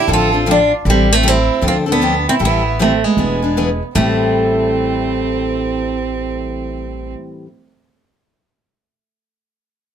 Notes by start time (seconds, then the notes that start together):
0.08 A1 D3 F3 C4 D4 A4
0.13 F4
0.32 C4 D4 A4
0.46 D3 F3 C4 D4 F4 A4
0.51 D4
0.85 A1 E3 G3 C4 E4 A4
0.90 G3 C4
1.12 A3 C4
1.23 E3 G3 C4 E4 A4
1.28 C4 E4
1.61 D2 D3 F3 C4 D4 A4
1.67 C4 F4
1.86 C4 D4 A4
1.91 B3 D4
2.01 D3 F3 C4 D4 A4
2.29 C4 E4
2.39 A1 E3 G3 C4 E4 A4
2.43 B3 E4
2.79 E3 G3 A3 C4 E4 A4
3.04 G#3 B3
3.17 E1 E3 B3 D4 G#4
3.42 B3 D4 G#4
3.57 E3 B3 D4 G#4
3.95 A1 A2 E3 G3 A3 C4 E4 A4